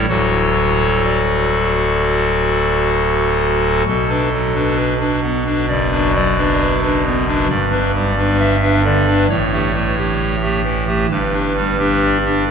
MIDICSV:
0, 0, Header, 1, 2, 480
1, 0, Start_track
1, 0, Tempo, 946372
1, 42, Time_signature, 4, 2, 24, 8
1, 1961, Tempo, 904977
1, 6545, End_track
2, 0, Start_track
2, 0, Title_t, "Pipe organ"
2, 0, Program_c, 0, 19
2, 44, Note_on_c, 0, 26, 49
2, 44, Note_on_c, 0, 38, 48
2, 44, Note_on_c, 0, 54, 41
2, 44, Note_on_c, 0, 73, 73
2, 45, Note_on_c, 0, 66, 37
2, 45, Note_on_c, 0, 69, 42
2, 513, Note_off_c, 0, 73, 0
2, 528, Note_on_c, 0, 74, 60
2, 1468, Note_off_c, 0, 74, 0
2, 1943, Note_off_c, 0, 26, 0
2, 1943, Note_off_c, 0, 38, 0
2, 1943, Note_off_c, 0, 54, 0
2, 1943, Note_off_c, 0, 66, 0
2, 1943, Note_off_c, 0, 69, 0
2, 1964, Note_on_c, 0, 35, 63
2, 1965, Note_on_c, 0, 47, 57
2, 1967, Note_on_c, 0, 69, 84
2, 2079, Note_on_c, 0, 71, 48
2, 2081, Note_on_c, 0, 62, 43
2, 2185, Note_off_c, 0, 71, 0
2, 2186, Note_off_c, 0, 62, 0
2, 2209, Note_on_c, 0, 54, 54
2, 2316, Note_off_c, 0, 54, 0
2, 2323, Note_on_c, 0, 62, 50
2, 2326, Note_on_c, 0, 71, 49
2, 2425, Note_off_c, 0, 71, 0
2, 2435, Note_off_c, 0, 69, 0
2, 2436, Note_on_c, 0, 71, 72
2, 2530, Note_off_c, 0, 62, 0
2, 2551, Note_off_c, 0, 71, 0
2, 2562, Note_on_c, 0, 62, 46
2, 2562, Note_on_c, 0, 71, 53
2, 2667, Note_off_c, 0, 62, 0
2, 2667, Note_off_c, 0, 71, 0
2, 2685, Note_on_c, 0, 59, 53
2, 2794, Note_off_c, 0, 59, 0
2, 2806, Note_on_c, 0, 62, 46
2, 2806, Note_on_c, 0, 71, 48
2, 2910, Note_off_c, 0, 62, 0
2, 2911, Note_off_c, 0, 71, 0
2, 2925, Note_on_c, 0, 74, 91
2, 2926, Note_on_c, 0, 42, 52
2, 2927, Note_on_c, 0, 30, 56
2, 3051, Note_on_c, 0, 71, 53
2, 3052, Note_on_c, 0, 62, 52
2, 3133, Note_off_c, 0, 74, 0
2, 3154, Note_off_c, 0, 71, 0
2, 3155, Note_off_c, 0, 62, 0
2, 3173, Note_on_c, 0, 74, 94
2, 3176, Note_on_c, 0, 54, 44
2, 3282, Note_off_c, 0, 54, 0
2, 3292, Note_on_c, 0, 62, 50
2, 3294, Note_on_c, 0, 71, 50
2, 3378, Note_off_c, 0, 74, 0
2, 3397, Note_off_c, 0, 71, 0
2, 3408, Note_on_c, 0, 71, 88
2, 3498, Note_off_c, 0, 62, 0
2, 3520, Note_off_c, 0, 71, 0
2, 3529, Note_on_c, 0, 62, 49
2, 3531, Note_on_c, 0, 71, 52
2, 3633, Note_off_c, 0, 62, 0
2, 3634, Note_off_c, 0, 71, 0
2, 3648, Note_on_c, 0, 59, 51
2, 3758, Note_off_c, 0, 59, 0
2, 3772, Note_on_c, 0, 62, 52
2, 3773, Note_on_c, 0, 71, 58
2, 3870, Note_off_c, 0, 42, 0
2, 3871, Note_off_c, 0, 30, 0
2, 3873, Note_off_c, 0, 35, 0
2, 3874, Note_off_c, 0, 47, 0
2, 3874, Note_off_c, 0, 62, 0
2, 3875, Note_off_c, 0, 71, 0
2, 3885, Note_on_c, 0, 43, 66
2, 3885, Note_on_c, 0, 74, 91
2, 3888, Note_on_c, 0, 31, 61
2, 4000, Note_on_c, 0, 62, 45
2, 4001, Note_on_c, 0, 71, 52
2, 4107, Note_off_c, 0, 62, 0
2, 4108, Note_off_c, 0, 71, 0
2, 4121, Note_on_c, 0, 55, 57
2, 4232, Note_off_c, 0, 55, 0
2, 4246, Note_on_c, 0, 62, 54
2, 4249, Note_on_c, 0, 71, 57
2, 4352, Note_off_c, 0, 74, 0
2, 4362, Note_on_c, 0, 76, 99
2, 4451, Note_off_c, 0, 62, 0
2, 4453, Note_off_c, 0, 71, 0
2, 4484, Note_on_c, 0, 71, 61
2, 4485, Note_on_c, 0, 62, 51
2, 4569, Note_off_c, 0, 76, 0
2, 4588, Note_off_c, 0, 62, 0
2, 4588, Note_off_c, 0, 71, 0
2, 4603, Note_on_c, 0, 50, 58
2, 4604, Note_on_c, 0, 74, 107
2, 4713, Note_off_c, 0, 50, 0
2, 4722, Note_on_c, 0, 71, 52
2, 4723, Note_on_c, 0, 62, 49
2, 4809, Note_off_c, 0, 74, 0
2, 4823, Note_off_c, 0, 43, 0
2, 4824, Note_off_c, 0, 31, 0
2, 4826, Note_off_c, 0, 71, 0
2, 4827, Note_off_c, 0, 62, 0
2, 4841, Note_on_c, 0, 45, 62
2, 4841, Note_on_c, 0, 73, 91
2, 4844, Note_on_c, 0, 33, 67
2, 4965, Note_on_c, 0, 57, 55
2, 4965, Note_on_c, 0, 67, 56
2, 5066, Note_off_c, 0, 57, 0
2, 5067, Note_off_c, 0, 67, 0
2, 5077, Note_on_c, 0, 57, 51
2, 5187, Note_off_c, 0, 57, 0
2, 5202, Note_on_c, 0, 57, 55
2, 5203, Note_on_c, 0, 67, 56
2, 5404, Note_off_c, 0, 57, 0
2, 5404, Note_off_c, 0, 67, 0
2, 5440, Note_on_c, 0, 57, 51
2, 5440, Note_on_c, 0, 67, 55
2, 5534, Note_off_c, 0, 73, 0
2, 5541, Note_off_c, 0, 57, 0
2, 5541, Note_off_c, 0, 67, 0
2, 5554, Note_on_c, 0, 52, 56
2, 5663, Note_off_c, 0, 52, 0
2, 5677, Note_on_c, 0, 57, 54
2, 5677, Note_on_c, 0, 67, 56
2, 5774, Note_off_c, 0, 45, 0
2, 5775, Note_off_c, 0, 33, 0
2, 5780, Note_off_c, 0, 57, 0
2, 5780, Note_off_c, 0, 67, 0
2, 5801, Note_on_c, 0, 43, 67
2, 5802, Note_on_c, 0, 31, 76
2, 5802, Note_on_c, 0, 71, 98
2, 5921, Note_on_c, 0, 62, 53
2, 5924, Note_on_c, 0, 67, 56
2, 6023, Note_off_c, 0, 62, 0
2, 6025, Note_off_c, 0, 67, 0
2, 6042, Note_on_c, 0, 55, 58
2, 6149, Note_off_c, 0, 55, 0
2, 6163, Note_on_c, 0, 62, 57
2, 6164, Note_on_c, 0, 67, 65
2, 6269, Note_off_c, 0, 71, 0
2, 6291, Note_on_c, 0, 74, 102
2, 6367, Note_off_c, 0, 62, 0
2, 6367, Note_off_c, 0, 67, 0
2, 6409, Note_on_c, 0, 62, 59
2, 6411, Note_on_c, 0, 67, 60
2, 6508, Note_off_c, 0, 62, 0
2, 6509, Note_off_c, 0, 67, 0
2, 6528, Note_on_c, 0, 50, 62
2, 6545, Note_off_c, 0, 31, 0
2, 6545, Note_off_c, 0, 43, 0
2, 6545, Note_off_c, 0, 50, 0
2, 6545, Note_off_c, 0, 74, 0
2, 6545, End_track
0, 0, End_of_file